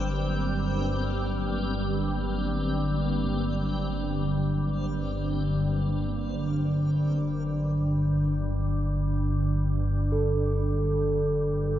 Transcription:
0.00 5.85 G1 medium
0.00 5.86 G2 medium
0.00 3.24 D3 medium
0.00 5.86 A#3 medium
0.00 5.91 C4 medium
3.26 9.59 D3 medium
5.86 11.79 G1 medium
5.86 11.79 G2 medium
10.12 11.79 A4 soft

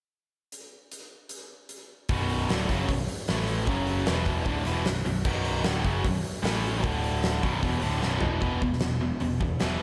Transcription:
0.52 closed hi-hat medium
0.92 closed hi-hat medium
1.29 closed hi-hat medium
1.69 closed hi-hat medium
2.09 2.47 B0 loud
2.09 2.49 B1 medium
2.09 2.49 F#2 medium
2.09 2.49 B2 loud
2.09 kick loud
2.09 open hi-hat medium
2.29 open hi-hat medium
2.49 2.68 D1 loud
2.49 2.68 D2 medium
2.49 2.69 A2 medium
2.49 2.69 D3 loud
2.49 snare loud
2.49 open hi-hat medium
2.69 2.87 F#1 loud
2.69 2.88 F#2 medium
2.69 2.89 C#3 medium
2.69 2.89 F#3 loud
2.69 kick medium
2.69 open hi-hat medium
2.88 3.07 B0 medium
2.88 3.05 B1 medium
2.88 3.05 F#2 medium
2.88 kick medium
2.88 open hi-hat medium
3.08 open hi-hat medium
3.28 3.66 A1 loud
3.28 3.67 A2 loud
3.28 3.68 E3 medium
3.28 3.68 A3 loud
3.28 snare loud
3.28 open hi-hat medium
3.47 open hi-hat medium
3.67 4.04 F#1 loud
3.67 4.06 F#2 loud
3.67 4.07 C#3 medium
3.67 4.07 F#3 loud
3.67 kick loud
3.67 open hi-hat medium
3.87 open hi-hat medium
4.06 4.45 E1 medium
4.06 4.46 E2 medium
4.06 4.46 B2 medium
4.06 4.46 E3 loud
4.06 snare loud
4.06 open hi-hat medium
4.25 kick medium
4.25 open hi-hat soft
4.45 4.65 D1 loud
4.45 4.65 D2 medium
4.45 4.66 A2 loud
4.45 4.66 D3 loud
4.45 kick medium
4.45 open hi-hat medium
4.65 4.85 E1 loud
4.65 4.85 E2 loud
4.65 4.85 B2 loud
4.65 4.86 E3 loud
4.65 snare soft
4.65 open hi-hat medium
4.85 5.05 B0 medium
4.85 5.02 B1 medium
4.85 5.02 F#2 medium
4.85 snare loud
4.85 open hi-hat medium
5.06 5.25 B0 medium
5.06 5.22 B1 medium
5.06 5.22 F#2 medium
5.06 open hi-hat medium
5.25 5.62 B0 loud
5.25 5.65 B1 loud
5.25 5.65 F#2 loud
5.25 5.65 B2 loud
5.25 kick loud
5.25 crash medium
5.45 open hi-hat medium
5.63 5.84 D1 loud
5.63 5.84 D2 medium
5.63 5.85 A2 medium
5.63 5.85 D3 loud
5.63 snare loud
5.63 open hi-hat medium
5.84 6.03 F#1 loud
5.84 6.04 F#2 medium
5.84 6.05 C#3 loud
5.84 6.05 F#3 loud
5.84 kick medium
5.84 open hi-hat medium
6.04 6.23 B0 medium
6.04 6.21 B1 medium
6.04 6.21 F#2 medium
6.04 kick loud
6.04 open hi-hat medium
6.24 open hi-hat medium
6.43 6.81 A1 loud
6.43 6.84 A2 loud
6.43 6.84 E3 loud
6.43 6.85 A3 loud
6.43 snare loud
6.43 open hi-hat medium
6.64 open hi-hat medium
6.83 7.39 D1 loud
6.83 7.42 D2 medium
6.83 7.43 A2 medium
6.83 7.43 D3 loud
6.83 kick loud
6.83 open hi-hat medium
7.04 open hi-hat medium
7.23 snare loud
7.23 open hi-hat medium
7.42 7.62 B0 loud
7.42 7.62 B1 medium
7.42 7.62 F#2 medium
7.42 7.61 B2 medium
7.42 kick medium
7.42 open hi-hat soft
7.62 7.81 E1 medium
7.62 7.81 E2 medium
7.62 7.82 B2 loud
7.62 7.82 E3 loud
7.62 kick medium
7.62 open hi-hat medium
7.81 8.02 D1 loud
7.81 8.01 D2 medium
7.81 8.02 A2 medium
7.81 8.02 D3 medium
7.81 open hi-hat medium
8.02 8.22 B0 loud
8.02 8.21 B1 medium
8.02 8.21 F#2 loud
8.02 8.21 B2 loud
8.02 snare medium
8.21 8.41 E1 loud
8.21 8.40 E2 medium
8.21 8.40 B2 medium
8.21 8.41 E3 medium
8.21 floor tom loud
8.40 8.56 E1 loud
8.40 8.60 E2 medium
8.40 8.61 B2 medium
8.40 8.61 E3 loud
8.40 kick medium
8.40 open hi-hat soft
8.62 8.76 E1 medium
8.62 8.80 E2 medium
8.62 8.80 B2 medium
8.62 kick medium
8.73 snare soft
8.80 9.11 E1 medium
8.80 9.00 E2 medium
8.80 9.00 B2 medium
8.80 snare loud
8.80 open hi-hat medium
9.01 9.19 E2 medium
9.01 9.20 B2 medium
9.20 9.36 E1 medium
9.20 9.39 E2 medium
9.20 9.40 B2 medium
9.20 open hi-hat medium
9.41 9.55 E1 medium
9.41 9.59 E2 medium
9.41 9.59 B2 medium
9.41 kick medium
9.60 9.76 E1 medium
9.60 9.80 E2 medium
9.60 9.80 B2 medium
9.60 9.80 E3 loud
9.60 snare loud
9.60 open hi-hat medium

